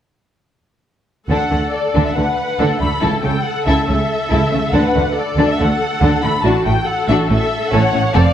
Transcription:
1.29 1.38 D2 soft
1.29 1.37 D3 soft
1.29 1.50 D4 soft
1.29 2.12 A4 soft
1.29 1.50 A4 soft
1.29 1.70 F#5 medium
1.50 1.60 D2 soft
1.50 1.59 D3 soft
1.50 1.58 A3 soft
1.50 1.59 D4 soft
1.73 2.05 D5 soft
1.94 2.03 D2 soft
1.94 2.03 D3 soft
1.94 2.14 D4 soft
1.94 2.14 A4 soft
2.06 2.17 E5 soft
2.16 2.25 D2 soft
2.16 2.24 D3 soft
2.16 2.24 A3 soft
2.16 2.24 D4 soft
2.16 2.59 B4 soft
2.16 2.81 F#5 soft
2.58 2.68 D2 soft
2.58 2.68 D3 soft
2.58 2.78 D4 soft
2.58 2.79 A4 soft
2.58 3.44 A4 soft
2.79 2.89 D2 soft
2.79 2.89 D3 soft
2.79 2.87 A3 soft
2.79 2.87 D4 soft
2.79 3.02 B5 medium
3.00 3.11 C#2 soft
3.00 3.10 C#3 soft
3.00 3.21 E4 soft
3.00 3.22 A4 soft
3.00 3.24 A5 soft
3.23 3.33 C#2 soft
3.23 3.32 C#3 soft
3.23 3.31 A3 soft
3.23 3.31 C#4 soft
3.23 3.44 G5 medium
3.45 4.71 A4 soft
3.45 3.67 F#5 medium
3.66 3.76 C#2 soft
3.66 3.75 C#3 soft
3.66 3.87 E4 soft
3.66 3.87 A4 medium
3.66 3.87 E5 medium
3.86 3.97 C#2 soft
3.86 3.97 C#3 soft
3.86 3.94 A3 soft
3.86 3.95 C#4 soft
3.86 4.72 E5 medium
4.29 4.39 C#2 medium
4.29 4.40 C#3 medium
4.29 4.50 E4 soft
4.29 4.50 A4 soft
4.51 4.60 C#2 soft
4.51 4.61 C#3 soft
4.51 4.59 A3 soft
4.51 4.59 C#4 soft
4.73 4.81 D2 medium
4.73 4.82 D3 medium
4.73 4.93 D4 medium
4.73 4.93 A4 medium
4.73 5.16 B4 medium
4.73 5.16 F#5 medium
4.95 5.03 D2 soft
4.95 5.04 D3 soft
4.95 5.03 A3 soft
4.95 5.03 D4 soft
5.16 6.42 A4 medium
5.16 5.48 D5 medium
5.36 5.44 D2 medium
5.36 5.45 D3 soft
5.36 5.58 D4 medium
5.36 5.58 A4 soft
5.51 5.60 E5 medium
5.59 5.67 D2 soft
5.59 5.67 D3 soft
5.59 5.68 A3 soft
5.59 5.68 D4 soft
5.59 6.23 F#5 medium
6.01 6.10 D2 medium
6.01 6.09 D3 medium
6.01 6.22 D4 medium
6.01 6.23 A4 soft
6.22 6.32 D2 soft
6.22 6.30 D3 soft
6.22 6.32 A3 soft
6.22 6.31 D4 soft
6.22 6.45 B5 medium
6.43 6.51 A1 medium
6.43 6.52 A2 medium
6.43 6.64 D4 soft
6.43 6.64 F#4 medium
6.43 6.87 F#4 medium
6.43 6.65 A5 medium
6.65 6.74 A1 soft
6.65 6.75 A2 soft
6.65 6.73 A3 soft
6.65 6.87 G5 medium
6.87 7.71 A4 medium
6.87 7.09 F#5 medium
7.08 7.16 A1 medium
7.08 7.16 A2 medium
7.08 7.29 D4 medium
7.08 7.29 F#4 medium
7.08 7.16 E5 medium
7.29 7.37 A1 soft
7.29 7.38 A2 soft
7.29 7.37 A3 soft
7.29 7.37 C#4 soft
7.29 7.72 E5 medium
7.71 7.81 A1 medium
7.71 7.81 A2 medium
7.71 7.92 C#4 medium
7.71 7.92 A4 medium
7.71 8.16 C#5 medium
7.71 8.16 F#5 medium
7.92 8.03 A1 soft
7.92 8.02 A2 soft
7.92 8.00 A3 soft
7.92 8.01 C#4 soft
8.14 8.24 F1 medium
8.14 8.24 F2 medium
8.14 8.33 C4 medium
8.14 8.33 A4 medium
8.14 8.33 D5 medium
8.14 8.33 F5 medium

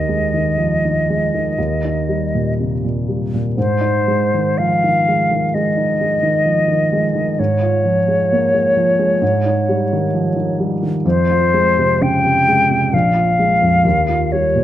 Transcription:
0.00 1.53 D#2 soft
0.00 0.23 D#4 soft
0.00 2.54 D#5 soft
0.09 0.48 G#3 soft
0.34 0.73 D#3 soft
0.58 0.83 F3 soft
0.85 1.24 D#3 soft
1.10 1.48 G#3 soft
1.34 1.58 D#3 soft
1.58 3.53 D#2 soft
1.84 2.23 D#4 soft
2.09 2.48 G3 soft
2.35 2.74 A#2 soft
2.60 2.84 C3 soft
2.84 3.23 A#2 soft
3.09 3.47 G3 soft
3.34 3.57 A#2 soft
3.56 5.51 G#2 soft
3.56 4.60 C5 medium
3.81 4.23 D#4 soft
4.08 4.49 G#3 soft
4.34 4.74 D#3 soft
4.58 4.84 F3 soft
4.58 5.56 F5 medium
4.84 5.22 D#3 soft
5.08 5.46 G#3 soft
5.31 5.68 D#3 soft
5.54 5.92 G#3 soft
5.54 7.41 D#5 medium
5.77 6.14 D#4 soft
6.01 6.37 G#3 soft
6.23 6.60 D#3 soft
6.46 6.69 F3 soft
6.68 7.06 D#3 soft
6.92 7.29 G#3 soft
7.15 7.38 D#3 soft
7.39 9.18 G#2 soft
7.39 10.58 C#5 medium
7.62 7.99 F4 soft
7.85 8.21 F3 soft
8.08 8.44 G#3 soft
8.32 8.54 A#3 soft
8.54 8.90 G#3 soft
8.77 9.13 F3 soft
8.99 9.22 G#3 soft
9.22 11.00 G#2 soft
9.45 9.82 D#4 soft
9.69 10.05 G3 soft
9.93 10.28 D#3 soft
10.14 10.36 F3 soft
10.36 10.72 D#3 soft
10.60 10.96 G3 soft
10.83 11.05 D#3 soft
11.05 12.90 F2 soft
11.05 12.04 C5 medium
11.31 11.69 F4 soft
11.54 11.92 G#3 soft
11.78 12.16 C3 soft
12.01 12.25 C#3 soft
12.01 12.95 G5 medium
12.25 12.61 C3 soft
12.48 12.84 G#3 soft
12.70 12.93 C3 soft
12.93 13.82 A#1 soft
12.93 14.34 F5 medium
13.15 13.52 F4 soft
13.39 13.76 G#3 soft
13.62 13.85 F2 soft
13.85 14.64 D#2 soft
14.08 14.46 F4 soft
14.32 14.64 G3 soft
14.32 14.64 C#5 soft
14.56 14.64 A#2 soft

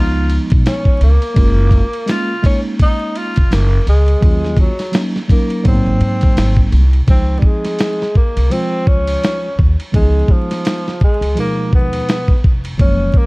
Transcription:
0.00 0.37 C#2 medium
0.00 1.08 F3 medium
0.00 1.09 G#3 medium
0.00 1.09 B3 medium
0.00 1.10 D#4 medium
0.00 0.37 F4 loud
0.29 ride medium
0.50 0.62 B1 medium
0.50 kick medium
0.50 ride soft
0.66 0.99 C#4 medium
0.66 snare loud
0.66 hi-hat pedal medium
0.66 ride medium
0.85 kick medium
1.01 1.16 C#2 medium
1.01 2.12 A#3 medium
1.01 ride medium
1.22 ride soft
1.35 1.79 F#1 loud
1.35 1.84 G#3 medium
1.35 1.85 A#3 medium
1.35 1.85 C#4 medium
1.35 1.86 F4 medium
1.35 kick loud
1.35 ride medium
1.71 kick medium
1.71 ride soft
1.93 ride soft
2.06 2.32 G#3 medium
2.06 2.33 A#3 medium
2.06 2.33 C#4 medium
2.06 2.34 F4 medium
2.06 snare loud
2.06 hi-hat pedal medium
2.06 ride medium
2.11 2.45 F4 loud
2.42 3.38 G#3 medium
2.42 3.39 A#3 medium
2.42 3.40 C#4 medium
2.42 2.61 C#4 medium
2.42 3.40 D#4 medium
2.42 kick medium
2.42 ride medium
2.79 3.19 D#4 loud
2.79 kick medium
2.79 ride medium
3.15 3.55 F4 medium
3.15 ride medium
3.36 3.48 F1 medium
3.36 kick loud
3.36 ride soft
3.51 3.78 F#1 medium
3.51 3.88 A#3 medium
3.51 snare loud
3.51 hi-hat pedal medium
3.51 ride medium
3.87 4.14 C#2 medium
3.87 4.55 G#3 medium
3.87 ride medium
4.08 ride soft
4.21 4.65 D#2 loud
4.21 4.70 F#3 medium
4.21 4.70 A#3 medium
4.21 4.71 C#4 medium
4.21 4.72 F4 medium
4.21 kick loud
4.21 ride medium
4.44 snare soft
4.57 5.02 F#3 medium
4.57 kick medium
4.57 ride medium
4.79 snare soft
4.79 ride soft
4.92 5.18 F#3 medium
4.92 5.19 A#3 medium
4.92 5.19 C#4 medium
4.92 5.20 D#4 medium
4.92 snare loud
4.92 hi-hat pedal medium
4.92 ride medium
5.16 snare soft
5.28 5.63 F#3 medium
5.28 5.64 A#3 medium
5.28 5.66 C#4 medium
5.28 5.66 D#4 medium
5.28 kick medium
5.28 ride medium
5.50 ride soft
5.64 5.81 G#1 loud
5.64 6.80 F#3 medium
5.64 6.81 A#3 medium
5.64 5.73 B3 medium
5.64 6.69 C4 medium
5.64 6.82 D#4 medium
5.64 kick medium
5.64 ride medium
5.73 6.84 C4 medium
5.86 5.98 G#1 medium
6.01 6.28 G#2 medium
6.01 ride medium
6.21 kick loud
6.21 ride soft
6.37 6.64 G#1 medium
6.37 snare loud
6.37 hi-hat pedal medium
6.37 ride medium
6.57 kick medium
6.72 6.99 C2 loud
6.72 ride medium
6.93 ride soft
7.07 7.35 C#2 medium
7.07 8.03 F3 medium
7.07 8.04 G#3 medium
7.07 8.04 C4 medium
7.07 7.40 C4 medium
7.07 8.05 D#4 medium
7.07 kick loud
7.07 ride medium
7.39 7.47 G3 medium
7.39 kick medium
7.46 8.16 G#3 medium
7.64 snare soft
7.64 ride medium
7.79 snare loud
7.79 hi-hat pedal soft
7.79 ride medium
8.02 snare soft
8.15 8.53 A#3 medium
8.15 kick medium
8.36 8.48 C2 medium
8.36 ride medium
8.50 9.46 F3 medium
8.50 9.46 G#3 medium
8.50 8.89 C4 loud
8.50 9.48 F4 medium
8.50 9.47 C5 medium
8.50 ride medium
8.87 9.14 C#2 medium
8.87 9.58 C#4 loud
8.87 kick medium
9.07 ride medium
9.23 snare loud
9.23 hi-hat pedal medium
9.23 ride medium
9.59 9.74 D#2 medium
9.59 kick medium
9.80 ride medium
9.92 10.21 C#2 medium
9.92 10.00 E3 medium
9.92 10.89 G#3 medium
9.92 10.33 G#3 medium
9.92 10.89 B3 medium
9.92 10.90 D#4 medium
9.92 kick loud
9.92 ride medium
9.99 10.92 F3 medium
10.28 11.02 F3 medium
10.28 kick medium
10.51 snare soft
10.51 ride medium
10.65 snare loud
10.65 hi-hat pedal soft
10.65 ride medium
10.88 snare soft
11.01 11.35 G#3 medium
11.01 kick medium
11.21 11.33 C#2 medium
11.21 ride medium
11.35 12.32 B2 medium
11.35 12.31 F3 medium
11.35 12.32 G#3 medium
11.35 12.33 D#4 medium
11.35 ride medium
11.40 11.71 A#3 loud
11.72 11.99 D#2 medium
11.72 12.41 B3 loud
11.72 kick medium
11.93 ride medium
12.09 snare loud
12.09 hi-hat pedal soft
12.09 ride medium
12.28 kick medium
12.44 12.71 F1 medium
12.44 kick medium
12.65 ride medium
12.77 13.07 F#1 loud
12.77 13.26 F3 medium
12.77 13.26 G#3 medium
12.77 13.26 A#3 medium
12.77 13.26 C#4 medium
12.77 13.19 C#4 loud
12.77 kick loud
12.77 ride medium
13.14 13.26 A#3 loud
13.14 kick medium

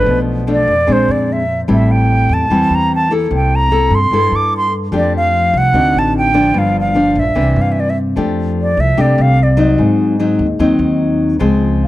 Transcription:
0.00 0.44 F3 medium
0.00 0.44 A3 medium
0.00 0.45 D4 medium
0.00 0.20 B4 medium
0.06 0.63 B1 medium
0.06 0.85 B2 soft
0.47 0.73 F3 soft
0.47 0.73 A3 soft
0.47 0.73 D4 medium
0.52 0.94 D5 medium
0.67 0.86 F2 medium
0.87 1.07 A#1 medium
0.87 1.66 A#2 soft
0.87 1.42 G#3 soft
0.87 1.42 C4 soft
0.87 1.42 D4 soft
0.92 1.13 C5 medium
1.08 1.65 F2 medium
1.08 1.34 D5 medium
1.32 1.61 E5 medium
1.68 2.25 A1 medium
1.68 2.47 A2 soft
1.68 2.46 G3 soft
1.68 2.46 C4 soft
1.68 2.46 E4 soft
1.73 1.93 E5 medium
1.91 2.35 G5 medium
2.29 2.48 E2 medium
2.33 2.76 A5 medium
2.50 2.69 E2 medium
2.50 3.29 E3 soft
2.50 3.08 G3 soft
2.50 3.08 C4 soft
2.50 3.08 E4 soft
2.70 3.27 E2 medium
2.75 2.93 A#5 medium
2.95 3.12 A5 medium
3.11 3.68 A#3 medium
3.11 3.68 E4 medium
3.11 3.69 A4 medium
3.31 3.87 C2 medium
3.31 4.10 C3 soft
3.36 3.57 G5 medium
3.55 3.96 A#5 medium
3.71 3.97 A#3 soft
3.71 3.97 E4 soft
3.71 3.98 A4 medium
3.91 4.10 G2 medium
3.95 4.37 C6 medium
4.11 4.30 G2 medium
4.11 4.91 G2 soft
4.11 4.67 A#3 soft
4.11 4.67 E4 soft
4.11 4.67 A4 medium
4.32 4.88 G2 medium
4.32 4.54 D6 medium
4.57 4.73 C6 medium
4.92 5.49 F2 medium
4.92 5.71 F3 soft
4.92 5.70 A3 soft
4.92 5.70 D4 soft
4.92 5.71 G4 soft
4.96 5.13 D5 medium
5.17 5.59 F5 medium
5.53 5.72 C2 medium
5.58 6.00 F#5 medium
5.73 5.92 D2 medium
5.73 6.53 D3 soft
5.73 6.31 C4 medium
5.73 6.31 D#4 soft
5.73 6.32 F#4 medium
5.94 6.51 A1 medium
5.99 6.16 A5 medium
6.17 6.60 G5 medium
6.34 6.92 F3 soft
6.34 6.92 A#3 soft
6.34 6.92 D4 medium
6.54 7.11 G1 medium
6.54 7.33 G2 soft
6.58 6.77 F5 medium
6.80 7.21 F5 medium
6.95 7.21 F3 soft
6.95 7.21 A#3 soft
6.95 7.21 D4 medium
7.15 7.34 A#1 medium
7.15 7.63 E5 medium
7.35 7.55 C2 medium
7.35 8.15 C3 soft
7.35 7.90 E3 soft
7.35 7.90 A#3 soft
7.35 7.90 D4 medium
7.56 8.13 G2 medium
7.61 7.73 F5 medium
7.72 7.82 E5 medium
7.80 7.91 D5 medium
7.90 7.98 E5 medium
8.16 8.73 F2 medium
8.16 8.95 F3 soft
8.16 8.71 A3 soft
8.16 8.71 D4 soft
8.16 8.71 G4 soft
8.61 8.82 D5 medium
8.77 8.96 C2 medium
8.77 9.02 E5 medium
8.97 9.16 C2 medium
8.97 9.77 C3 medium
8.97 9.38 A3 soft
8.97 9.38 D4 soft
8.97 9.38 G4 medium
8.97 9.23 D5 medium
9.18 9.75 C2 medium
9.18 9.45 F5 medium
9.43 9.81 D5 medium
9.57 10.15 F#3 medium
9.57 10.15 C4 medium
9.57 10.16 D#4 medium
9.78 10.35 G#2 medium
9.78 10.58 G#2 soft
10.20 10.45 F#3 soft
10.20 10.46 C4 soft
10.20 10.46 D#4 medium
10.39 10.58 D#2 medium
10.59 10.78 D#2 medium
10.59 11.39 D#3 medium
10.59 11.38 F#3 soft
10.59 11.37 C4 medium
10.59 11.38 D#4 medium
10.79 11.36 D#2 medium
11.39 11.88 C#2 medium
11.39 11.88 C#3 medium
11.39 11.88 F3 soft
11.39 11.88 G#3 medium
11.39 11.88 C4 medium
11.84 11.88 F5 medium

